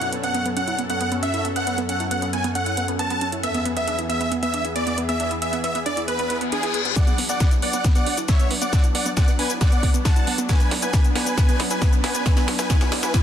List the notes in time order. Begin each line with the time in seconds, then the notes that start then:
Already playing: F#2 F#3 C#4 A4 F#5
0.02 E4, closed hi-hat
0.13 B3, closed hi-hat
0.23 B3 F#5, closed hi-hat
0.34 B3, closed hi-hat
0.46 B3, closed hi-hat
0.57 C#4 F#5, closed hi-hat
0.68 E4, closed hi-hat
0.79 B3, closed hi-hat
0.90 B3 F#5, closed hi-hat
1.01 B3, closed hi-hat
1.12 B3, closed hi-hat
1.23 C#4 E5, closed hi-hat
1.34 E4, closed hi-hat
1.45 B3, closed hi-hat
1.56 B3 F#5, closed hi-hat
1.67 B3, closed hi-hat
1.78 B3, closed hi-hat
1.89 C#4 F#5, closed hi-hat
2.00 E4, closed hi-hat
2.11 B3 F#5, closed hi-hat
2.22 B3, closed hi-hat
2.33 B3 G#5, closed hi-hat
2.44 B3, closed hi-hat
2.55 C#4 F#5, closed hi-hat
2.66 E4, closed hi-hat
2.77 B3, closed hi-hat
2.88 B3, closed hi-hat
2.99 B3 A5, closed hi-hat
3.10 B3, closed hi-hat
3.21 C#4, closed hi-hat
3.32 E4, closed hi-hat
3.43 E2 E3 B3 G#4 E5, closed hi-hat
3.54 B3, closed hi-hat
3.65 B3, closed hi-hat
3.76 B3 E5, closed hi-hat
3.88 D4, closed hi-hat
3.99 E4, closed hi-hat
4.09 B3 E5, closed hi-hat
4.21 B3, closed hi-hat
4.32 B3, closed hi-hat
4.42 B3 E5, closed hi-hat
4.54 D4, closed hi-hat
4.65 E4, closed hi-hat
4.76 B3 D5, closed hi-hat
4.87 B3, closed hi-hat
4.98 B3, closed hi-hat
5.09 B3 E5, closed hi-hat
5.20 D4, closed hi-hat
5.31 E4, closed hi-hat
5.42 B3 E5, closed hi-hat
5.53 B3, closed hi-hat
5.64 B3 E5, closed hi-hat
5.75 B3, closed hi-hat
5.86 D4 D5, closed hi-hat
5.97 E4, closed hi-hat
6.08 B3 B4, closed hi-hat, reverse cymbal
6.19 B3, closed hi-hat
6.30 B3, closed hi-hat
6.41 B3, closed hi-hat
6.52 D4 G#4, closed hi-hat
6.63 E4, closed hi-hat
6.74 B3, closed hi-hat
6.85 B3, closed hi-hat
6.96 F#3 B3 D4 D5 F#5, kick, snare, closed hi-hat, riser, shaker
7.07 B1 B3, closed hi-hat, shaker
7.18 B1 B3, open hi-hat
7.29 B1 B3 D5 F#5, closed hi-hat, shaker
7.40 D4, kick, snare, closed hi-hat, shaker
7.51 B1 E4, closed hi-hat, shaker
7.62 F#1 B3 D5 F#5, open hi-hat
7.73 B1 B3, closed hi-hat, shaker
7.84 B3, kick, snare, closed hi-hat, shaker
7.95 B1 B3 D5 F#5, closed hi-hat, shaker
8.06 B1 D4, open hi-hat
8.18 B1 E4, closed hi-hat, shaker
8.28 B3 C#5 E5, kick, snare, closed hi-hat, shaker
8.40 B1 B3, closed hi-hat, shaker
8.51 B1 B3, open hi-hat
8.62 B1 B3 D5 F#5, closed hi-hat, shaker
8.73 D4, kick, snare, closed hi-hat, shaker
8.84 B1 E4, closed hi-hat, shaker
8.95 B1 B3 D5 F#5, open hi-hat
9.06 B1 B3, closed hi-hat, shaker
9.17 B3 D5 F#5, kick, snare, closed hi-hat, shaker
9.28 B1 B3, closed hi-hat, shaker
9.39 F#1 D4 B4 G#5, open hi-hat
9.50 B1 E4, closed hi-hat, shaker
9.61 B3 D5 F#5, kick, snare, closed hi-hat, shaker
9.72 B1 B3, closed hi-hat, shaker
9.83 B1 B3, kick, open hi-hat
9.94 B1 B3, closed hi-hat, shaker
10.05 D4 F#5 A5, kick, snare, closed hi-hat, shaker
10.16 B1 E4, closed hi-hat, shaker
10.27 B1 B3, open hi-hat
10.38 B1 B3, closed hi-hat, shaker
10.49 B3 B4 G#5, kick, snare, closed hi-hat, shaker
10.60 B1 B3, closed hi-hat, shaker
10.71 B1 D4, snare, open hi-hat
10.82 B1 E4 B4 G#5, closed hi-hat, shaker
10.93 B3, kick, snare, closed hi-hat, shaker
11.04 B1 B3, closed hi-hat, shaker
11.15 F#1 B3 B4 G#5, snare, open hi-hat
11.26 B1 B3, closed hi-hat, shaker
11.38 B3 B4 G#5, kick, snare, closed hi-hat, shaker
11.48 B1 B3, closed hi-hat, shaker
11.60 B1 D4, snare, open hi-hat
11.71 B1 E4 B4 G#5, closed hi-hat, shaker
11.82 B3, kick, snare, closed hi-hat, shaker
11.93 B1 B3, closed hi-hat, shaker
12.04 B1 B3 B4 G#5, snare, open hi-hat
12.15 B1 B3, closed hi-hat, shaker
12.26 B3 B4 G#5, kick, snare, closed hi-hat, shaker
12.37 B1 B3, snare, closed hi-hat, shaker
12.48 B1 D4, snare, open hi-hat
12.59 B1 E4 B4 G#5, snare, closed hi-hat, shaker
12.70 B3 B4 G#5, kick, snare, closed hi-hat, shaker
12.81 B1 B3, snare, closed hi-hat, shaker
12.92 D4, snare, open hi-hat
13.03 B1 E4 B4 G#5, snare, closed hi-hat, shaker
13.14 B3 B4 G#5, kick, snare, closed hi-hat, reverse cymbal, shaker